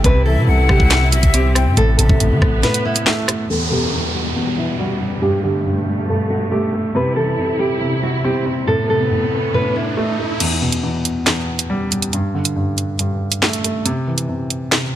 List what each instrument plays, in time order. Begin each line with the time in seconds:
0.04 808-style bass C2, grand piano C3, string section C3 G3 E4, nylon-string guitar B4, kick, closed hi-hat
0.25 grand piano E3, nylon-string guitar A4, flute E5
0.37 808-style bass C3
0.48 808-style bass C2, grand piano C3, flute F#5
0.69 808-style bass C3, nylon-string guitar G4, kick, cross-stick
0.80 808-style bass C2, kick
0.91 grand piano C3, snare, clap, closed hi-hat
1.12 808-style bass B1, nylon-string guitar F#4, flute E5, closed hi-hat
1.23 808-style bass C2, kick, closed hi-hat
1.34 grand piano C4, nylon-string guitar G4, closed hi-hat
1.55 grand piano C4, flute G5, cross-stick, closed hi-hat
1.66 808-style bass G2
1.77 808-style bass A1, grand piano A2, string section A3 B3, nylon-string guitar A4, closed hi-hat
1.99 808-style bass A1, grand piano C3, nylon-string guitar A4, flute E5, closed hi-hat
2.09 808-style bass A1, kick
2.20 grand piano A2, closed hi-hat
2.31 808-style bass E3
2.42 808-style bass A1, kick, cross-stick
2.63 grand piano A2, nylon-string guitar B4, snare, closed hi-hat
2.74 closed hi-hat
2.85 nylon-string guitar E4
2.96 closed hi-hat
3.06 grand piano A3, snare, clap
3.28 grand piano A3, cross-stick, closed hi-hat
3.50 grand piano E2, string section E2 B2 G3, nylon-string guitar A4, downlifter
3.71 grand piano B2, nylon-string guitar G4
3.93 grand piano E2
4.15 nylon-string guitar F#4
4.36 grand piano E2
4.58 nylon-string guitar E4
4.79 grand piano G3, nylon-string guitar F#4
5.01 grand piano G3
5.22 grand piano G2, string section B2 A3, nylon-string guitar G4
5.43 grand piano D3, nylon-string guitar G4
5.66 grand piano G2
6.09 grand piano G2, nylon-string guitar A4
6.30 nylon-string guitar F#4
6.51 grand piano A3, nylon-string guitar G4
6.73 grand piano A3
6.95 grand piano C3, string section C3 E4, nylon-string guitar B4, riser
7.16 grand piano E3, nylon-string guitar A4
7.38 grand piano C3
7.59 nylon-string guitar G4
7.81 grand piano C3
8.03 nylon-string guitar F#4
8.24 grand piano C4, nylon-string guitar G4
8.46 grand piano C4
8.67 grand piano A2, string section A3 B3, nylon-string guitar A4
8.89 grand piano C3, nylon-string guitar A4
9.11 grand piano A2
9.54 grand piano A2, nylon-string guitar B4
9.76 nylon-string guitar E4
9.97 grand piano A3
10.19 grand piano A3
10.40 grand piano E2, closed hi-hat, crash
10.62 grand piano B2
10.72 closed hi-hat
10.83 grand piano E2
11.05 closed hi-hat
11.26 grand piano E2, snare, clap, closed hi-hat
11.59 closed hi-hat
11.70 grand piano G3
11.91 grand piano G3, closed hi-hat
12.02 closed hi-hat
12.13 grand piano G2, closed hi-hat
12.34 grand piano D3
12.45 closed hi-hat
12.56 grand piano G2
12.78 closed hi-hat
12.99 grand piano G2, closed hi-hat
13.32 closed hi-hat
13.42 grand piano A3, snare, clap
13.53 closed hi-hat
13.64 grand piano A3, closed hi-hat
13.85 grand piano C3, closed hi-hat
14.07 grand piano E3
14.18 closed hi-hat
14.29 grand piano C3
14.50 closed hi-hat
14.72 grand piano C3, snare, clap, closed hi-hat